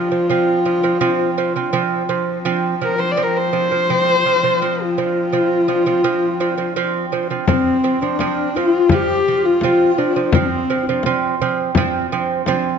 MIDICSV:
0, 0, Header, 1, 6, 480
1, 0, Start_track
1, 0, Tempo, 716846
1, 1160, Time_signature, 4, 2, 24, 8
1, 8560, End_track
2, 0, Start_track
2, 0, Title_t, "Horsehead fiddle"
2, 0, Program_c, 0, 110
2, 0, Note_on_c, 0, 65, 87
2, 1428, Note_off_c, 0, 65, 0
2, 1899, Note_on_c, 0, 70, 83
2, 2005, Note_on_c, 0, 72, 91
2, 2015, Note_off_c, 0, 70, 0
2, 2087, Note_on_c, 0, 74, 89
2, 2097, Note_off_c, 0, 72, 0
2, 2165, Note_on_c, 0, 70, 82
2, 2175, Note_off_c, 0, 74, 0
2, 2257, Note_on_c, 0, 72, 104
2, 2267, Note_off_c, 0, 70, 0
2, 3234, Note_on_c, 0, 65, 86
2, 3244, Note_off_c, 0, 72, 0
2, 4839, Note_off_c, 0, 65, 0
2, 5013, Note_on_c, 0, 60, 81
2, 5372, Note_on_c, 0, 62, 84
2, 5382, Note_off_c, 0, 60, 0
2, 5740, Note_on_c, 0, 65, 98
2, 5750, Note_off_c, 0, 62, 0
2, 5988, Note_on_c, 0, 67, 107
2, 5998, Note_off_c, 0, 65, 0
2, 6331, Note_on_c, 0, 65, 99
2, 6341, Note_off_c, 0, 67, 0
2, 6680, Note_on_c, 0, 62, 85
2, 6691, Note_off_c, 0, 65, 0
2, 6916, Note_on_c, 0, 60, 88
2, 6926, Note_off_c, 0, 62, 0
2, 7398, Note_off_c, 0, 60, 0
2, 8560, End_track
3, 0, Start_track
3, 0, Title_t, "Xiao"
3, 0, Program_c, 1, 77
3, 4997, Note_on_c, 1, 60, 82
3, 5368, Note_on_c, 1, 62, 87
3, 5378, Note_off_c, 1, 60, 0
3, 5726, Note_on_c, 1, 65, 88
3, 5736, Note_off_c, 1, 62, 0
3, 5973, Note_on_c, 1, 67, 103
3, 5983, Note_off_c, 1, 65, 0
3, 6275, Note_off_c, 1, 67, 0
3, 6275, Note_on_c, 1, 67, 65
3, 6315, Note_on_c, 1, 65, 90
3, 6325, Note_off_c, 1, 67, 0
3, 6923, Note_on_c, 1, 60, 75
3, 6933, Note_off_c, 1, 65, 0
3, 7252, Note_on_c, 1, 65, 43
3, 7262, Note_off_c, 1, 60, 0
3, 7273, Note_on_c, 1, 62, 64
3, 7283, Note_off_c, 1, 65, 0
3, 7397, Note_off_c, 1, 62, 0
3, 8560, End_track
4, 0, Start_track
4, 0, Title_t, "Lute"
4, 0, Program_c, 2, 24
4, 77, Note_on_c, 2, 53, 55
4, 77, Note_on_c, 2, 60, 67
4, 174, Note_off_c, 2, 60, 0
4, 175, Note_off_c, 2, 53, 0
4, 198, Note_on_c, 2, 53, 86
4, 204, Note_on_c, 2, 60, 96
4, 391, Note_off_c, 2, 53, 0
4, 393, Note_off_c, 2, 60, 0
4, 438, Note_on_c, 2, 53, 70
4, 440, Note_on_c, 2, 60, 70
4, 535, Note_off_c, 2, 53, 0
4, 536, Note_off_c, 2, 60, 0
4, 559, Note_on_c, 2, 53, 75
4, 561, Note_on_c, 2, 60, 82
4, 656, Note_off_c, 2, 53, 0
4, 656, Note_off_c, 2, 60, 0
4, 675, Note_on_c, 2, 60, 108
4, 676, Note_on_c, 2, 53, 103
4, 869, Note_off_c, 2, 60, 0
4, 870, Note_off_c, 2, 53, 0
4, 922, Note_on_c, 2, 53, 68
4, 924, Note_on_c, 2, 60, 88
4, 1017, Note_off_c, 2, 53, 0
4, 1018, Note_off_c, 2, 60, 0
4, 1043, Note_on_c, 2, 53, 70
4, 1048, Note_on_c, 2, 60, 74
4, 1138, Note_off_c, 2, 53, 0
4, 1139, Note_off_c, 2, 60, 0
4, 1157, Note_on_c, 2, 53, 99
4, 1162, Note_on_c, 2, 60, 105
4, 1351, Note_off_c, 2, 53, 0
4, 1353, Note_off_c, 2, 60, 0
4, 1400, Note_on_c, 2, 53, 87
4, 1401, Note_on_c, 2, 60, 81
4, 1592, Note_off_c, 2, 53, 0
4, 1593, Note_off_c, 2, 60, 0
4, 1641, Note_on_c, 2, 53, 103
4, 1644, Note_on_c, 2, 60, 117
4, 1833, Note_off_c, 2, 53, 0
4, 1835, Note_off_c, 2, 60, 0
4, 1885, Note_on_c, 2, 53, 73
4, 1886, Note_on_c, 2, 60, 77
4, 1979, Note_off_c, 2, 53, 0
4, 1979, Note_off_c, 2, 60, 0
4, 1997, Note_on_c, 2, 53, 57
4, 2000, Note_on_c, 2, 60, 69
4, 2095, Note_off_c, 2, 53, 0
4, 2096, Note_off_c, 2, 60, 0
4, 2122, Note_on_c, 2, 53, 82
4, 2125, Note_on_c, 2, 60, 94
4, 2314, Note_off_c, 2, 53, 0
4, 2315, Note_off_c, 2, 60, 0
4, 2362, Note_on_c, 2, 53, 71
4, 2364, Note_on_c, 2, 60, 74
4, 2459, Note_off_c, 2, 53, 0
4, 2459, Note_off_c, 2, 60, 0
4, 2487, Note_on_c, 2, 53, 66
4, 2489, Note_on_c, 2, 60, 71
4, 2581, Note_off_c, 2, 53, 0
4, 2581, Note_off_c, 2, 60, 0
4, 2611, Note_on_c, 2, 53, 83
4, 2612, Note_on_c, 2, 60, 93
4, 2799, Note_off_c, 2, 60, 0
4, 2800, Note_off_c, 2, 53, 0
4, 2851, Note_on_c, 2, 53, 73
4, 2854, Note_on_c, 2, 60, 82
4, 2944, Note_off_c, 2, 53, 0
4, 2944, Note_off_c, 2, 60, 0
4, 2969, Note_on_c, 2, 53, 68
4, 2975, Note_on_c, 2, 60, 79
4, 3063, Note_off_c, 2, 53, 0
4, 3064, Note_off_c, 2, 60, 0
4, 3092, Note_on_c, 2, 53, 79
4, 3095, Note_on_c, 2, 60, 94
4, 3280, Note_off_c, 2, 53, 0
4, 3282, Note_off_c, 2, 60, 0
4, 3334, Note_on_c, 2, 53, 68
4, 3335, Note_on_c, 2, 60, 79
4, 3521, Note_off_c, 2, 53, 0
4, 3521, Note_off_c, 2, 60, 0
4, 3566, Note_on_c, 2, 53, 87
4, 3571, Note_on_c, 2, 60, 100
4, 3758, Note_off_c, 2, 53, 0
4, 3759, Note_off_c, 2, 60, 0
4, 3803, Note_on_c, 2, 53, 78
4, 3807, Note_on_c, 2, 60, 86
4, 3900, Note_off_c, 2, 53, 0
4, 3901, Note_off_c, 2, 60, 0
4, 3925, Note_on_c, 2, 53, 72
4, 3929, Note_on_c, 2, 60, 76
4, 4022, Note_off_c, 2, 53, 0
4, 4022, Note_off_c, 2, 60, 0
4, 4045, Note_on_c, 2, 53, 101
4, 4047, Note_on_c, 2, 60, 105
4, 4237, Note_off_c, 2, 53, 0
4, 4238, Note_off_c, 2, 60, 0
4, 4287, Note_on_c, 2, 53, 80
4, 4289, Note_on_c, 2, 60, 91
4, 4383, Note_off_c, 2, 53, 0
4, 4383, Note_off_c, 2, 60, 0
4, 4403, Note_on_c, 2, 53, 71
4, 4406, Note_on_c, 2, 60, 74
4, 4501, Note_off_c, 2, 53, 0
4, 4501, Note_off_c, 2, 60, 0
4, 4527, Note_on_c, 2, 53, 97
4, 4531, Note_on_c, 2, 60, 107
4, 4719, Note_off_c, 2, 53, 0
4, 4720, Note_off_c, 2, 60, 0
4, 4768, Note_on_c, 2, 53, 72
4, 4772, Note_on_c, 2, 60, 81
4, 4864, Note_off_c, 2, 53, 0
4, 4864, Note_off_c, 2, 60, 0
4, 4890, Note_on_c, 2, 53, 68
4, 4894, Note_on_c, 2, 60, 75
4, 4985, Note_off_c, 2, 53, 0
4, 4985, Note_off_c, 2, 60, 0
4, 5013, Note_on_c, 2, 53, 89
4, 5013, Note_on_c, 2, 60, 107
4, 5201, Note_off_c, 2, 60, 0
4, 5202, Note_off_c, 2, 53, 0
4, 5248, Note_on_c, 2, 53, 67
4, 5250, Note_on_c, 2, 60, 86
4, 5343, Note_off_c, 2, 53, 0
4, 5343, Note_off_c, 2, 60, 0
4, 5371, Note_on_c, 2, 53, 71
4, 5373, Note_on_c, 2, 60, 79
4, 5465, Note_off_c, 2, 53, 0
4, 5465, Note_off_c, 2, 60, 0
4, 5492, Note_on_c, 2, 53, 99
4, 5495, Note_on_c, 2, 60, 104
4, 5681, Note_off_c, 2, 53, 0
4, 5682, Note_off_c, 2, 60, 0
4, 5733, Note_on_c, 2, 53, 74
4, 5736, Note_on_c, 2, 60, 84
4, 5921, Note_off_c, 2, 53, 0
4, 5922, Note_off_c, 2, 60, 0
4, 5970, Note_on_c, 2, 53, 88
4, 5974, Note_on_c, 2, 60, 103
4, 6160, Note_off_c, 2, 53, 0
4, 6161, Note_off_c, 2, 60, 0
4, 6215, Note_on_c, 2, 53, 74
4, 6215, Note_on_c, 2, 60, 79
4, 6401, Note_off_c, 2, 53, 0
4, 6401, Note_off_c, 2, 60, 0
4, 6451, Note_on_c, 2, 53, 97
4, 6456, Note_on_c, 2, 60, 105
4, 6639, Note_off_c, 2, 53, 0
4, 6642, Note_off_c, 2, 60, 0
4, 6684, Note_on_c, 2, 53, 68
4, 6685, Note_on_c, 2, 60, 82
4, 6780, Note_off_c, 2, 53, 0
4, 6780, Note_off_c, 2, 60, 0
4, 6803, Note_on_c, 2, 53, 69
4, 6804, Note_on_c, 2, 60, 72
4, 6898, Note_off_c, 2, 60, 0
4, 6899, Note_off_c, 2, 53, 0
4, 6926, Note_on_c, 2, 53, 93
4, 6928, Note_on_c, 2, 60, 104
4, 7116, Note_off_c, 2, 53, 0
4, 7116, Note_off_c, 2, 60, 0
4, 7163, Note_on_c, 2, 53, 77
4, 7167, Note_on_c, 2, 60, 81
4, 7259, Note_off_c, 2, 53, 0
4, 7260, Note_off_c, 2, 60, 0
4, 7291, Note_on_c, 2, 60, 80
4, 7292, Note_on_c, 2, 53, 79
4, 7382, Note_off_c, 2, 60, 0
4, 7383, Note_off_c, 2, 53, 0
4, 7406, Note_on_c, 2, 53, 102
4, 7407, Note_on_c, 2, 60, 108
4, 7594, Note_off_c, 2, 60, 0
4, 7595, Note_off_c, 2, 53, 0
4, 7643, Note_on_c, 2, 53, 88
4, 7643, Note_on_c, 2, 60, 96
4, 7833, Note_off_c, 2, 60, 0
4, 7834, Note_off_c, 2, 53, 0
4, 7882, Note_on_c, 2, 53, 112
4, 7884, Note_on_c, 2, 60, 123
4, 8072, Note_off_c, 2, 53, 0
4, 8072, Note_off_c, 2, 60, 0
4, 8118, Note_on_c, 2, 53, 92
4, 8119, Note_on_c, 2, 60, 102
4, 8310, Note_off_c, 2, 53, 0
4, 8310, Note_off_c, 2, 60, 0
4, 8353, Note_on_c, 2, 53, 112
4, 8357, Note_on_c, 2, 60, 127
4, 8547, Note_off_c, 2, 53, 0
4, 8548, Note_off_c, 2, 60, 0
4, 8560, End_track
5, 0, Start_track
5, 0, Title_t, "Horsehead fiddle"
5, 0, Program_c, 3, 110
5, 0, Note_on_c, 3, 53, 63
5, 1152, Note_off_c, 3, 53, 0
5, 1156, Note_on_c, 3, 53, 63
5, 5052, Note_off_c, 3, 53, 0
5, 8560, End_track
6, 0, Start_track
6, 0, Title_t, "Frame drum"
6, 5006, Note_on_c, 9, 64, 76
6, 5073, Note_off_c, 9, 64, 0
6, 5366, Note_on_c, 9, 64, 23
6, 5433, Note_off_c, 9, 64, 0
6, 5484, Note_on_c, 9, 64, 55
6, 5551, Note_off_c, 9, 64, 0
6, 5729, Note_on_c, 9, 64, 23
6, 5796, Note_off_c, 9, 64, 0
6, 5955, Note_on_c, 9, 64, 74
6, 6022, Note_off_c, 9, 64, 0
6, 6435, Note_on_c, 9, 64, 62
6, 6502, Note_off_c, 9, 64, 0
6, 6914, Note_on_c, 9, 64, 81
6, 6981, Note_off_c, 9, 64, 0
6, 7275, Note_on_c, 9, 64, 23
6, 7342, Note_off_c, 9, 64, 0
6, 7386, Note_on_c, 9, 64, 59
6, 7453, Note_off_c, 9, 64, 0
6, 7632, Note_on_c, 9, 64, 26
6, 7699, Note_off_c, 9, 64, 0
6, 7867, Note_on_c, 9, 64, 73
6, 7934, Note_off_c, 9, 64, 0
6, 8345, Note_on_c, 9, 64, 60
6, 8412, Note_off_c, 9, 64, 0
6, 8560, End_track
0, 0, End_of_file